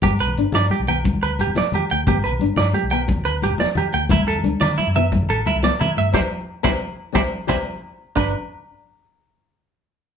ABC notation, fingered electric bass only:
X:1
M:12/8
L:1/16
Q:3/8=118
K:G
V:1 name="Fingered electric bass" clef=bass
G,,,2 B,,,2 G,,, z G,,2 z B,,,4- B,,, D,,2 G,,, E,,,2 z E,, z D,,2 | G,,,2 B,,,2 G,,, z G,,2 z B,,,4- B,,, D,,2 G,,, E,,,2 z E,, z D,,2 | D,,2 E,,2 D,, z D,2 z F,,4- F,, A,,,2 D,, C,,2 z C, z G,,2 | C,, z4 z C,, z4 z C,, z3 C,, z6 z |
G,,,2 z16 z6 |]